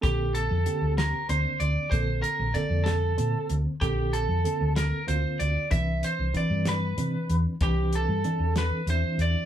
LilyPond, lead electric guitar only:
\new Staff \with { instrumentName = "Lead electric guitar" } { \time 6/8 \key bes \major \tempo 4. = 63 g'8 a'4 bes'8 c''8 d''8 | c''8 bes'8 d''8 a'4 r8 | g'8 a'4 bes'8 c''8 d''8 | e''8 c''8 d''8 b'4 r8 |
g'8 a'4 b'8 c''8 d''8 | }